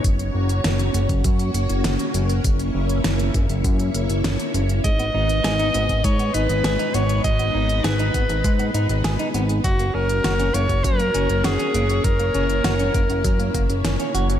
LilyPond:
<<
  \new Staff \with { instrumentName = "Alto saxophone" } { \time 4/4 \key fis \mixolydian \tempo 4 = 100 r1 | r1 | dis''2 cis''8 b'4 cis''8 | dis''4 b'2 r4 |
fis'8 ais'4 cis''8 ais'4 gis'4 | ais'2. r4 | }
  \new Staff \with { instrumentName = "String machine" } { \time 4/4 \key fis \mixolydian << { <ais cis' cis''>1~ | <ais cis' cis''>1 | <gis b b'>1~ | <gis b b'>1 |
<ais cis' cis''>1~ | <ais cis' cis''>1 | } \\ { fis'1 | e'1 | dis'1~ | dis'1 |
fis'1 | e'1 | } >> }
  \new Staff \with { instrumentName = "Clean electric guitar" } { \time 4/4 \key fis \mixolydian r1 | r1 | gis16 b16 dis'16 r16 gis'16 dis'16 b16 r16 gis16 b16 dis'16 r16 gis'16 dis'16 b16 r16 | gis16 b16 dis'16 r16 gis'16 dis'16 b16 r16 gis16 b16 dis'16 r16 gis'16 dis'16 b16 r16 |
fis16 ais16 cis'16 r16 fis'16 cis'16 ais16 r16 fis16 ais16 cis'16 r16 fis'16 cis'16 ais16 r16 | fis16 ais16 cis'16 r16 fis'16 cis'16 ais16 r16 fis16 ais16 ais16 r16 cis'16 cis'16 fis'16 fis16 | }
  \new Staff \with { instrumentName = "Analog synth bass" } { \clef bass \time 4/4 \key fis \mixolydian fis,,8 fis,,8 fis,,8 fis,,16 fis,,16 fis,8 fis,,16 fis,,16 fis,,16 r16 fis,,8 | fis,,8 fis,,8 fis,,8 fis,,16 fis,,16 fis,8 fis,,16 fis,,16 fis,,16 r16 fis,,8 | gis,,8 gis,,8 gis,,8 gis,,16 gis,,16 gis,8 gis,,16 gis,,16 gis,,16 r16 gis,,8 | gis,,8 gis,,8 gis,,8 gis,,16 gis,,16 gis,8 gis,,16 gis,,16 gis,,16 r16 gis,,8 |
fis,,8 fis,,8 fis,,8 fis,,16 fis,,16 fis,8 fis,,16 fis,,16 fis,,16 r16 fis,,8 | fis,,8 fis,,8 fis,,8 fis,,16 fis,,16 fis,8 fis,,16 fis,,16 fis,,16 r16 fis,,8 | }
  \new DrumStaff \with { instrumentName = "Drums" } \drummode { \time 4/4 <hh bd>16 hh8 hh16 <hh sn>16 hh16 hh16 <hh bd>16 <hh bd>16 hh16 hh16 hh16 <hh sn>16 hh16 hh16 hh16 | <hh bd>16 hh8 hh16 <hh sn>16 hh16 <hh bd>16 hh16 <hh bd>16 hh16 hh16 hh16 <hh sn>16 hh16 hh16 hh16 | <hh bd>16 hh8 hh16 <hh sn>16 hh16 hh16 <hh bd>16 <hh bd>16 hh16 hh16 hh16 <hh sn>16 hh16 hh16 hh16 | <hh bd>16 hh8 hh16 <hh sn>16 hh16 <hh bd>16 hh16 <hh bd>16 hh16 hh16 hh16 <hh sn>16 hh16 hh16 hh16 |
<hh bd>16 hh8 hh16 <hh sn>16 hh16 hh16 <hh bd>16 <hh bd>16 hh16 hh16 hh16 <hh sn>16 hh16 hh16 hh16 | <hh bd>16 hh16 hh16 hh16 <hh sn>16 hh16 <hh bd>16 hh16 <hh bd>16 hh16 <hh bd>16 hh16 <hh sn>16 hh16 hh16 hh16 | }
>>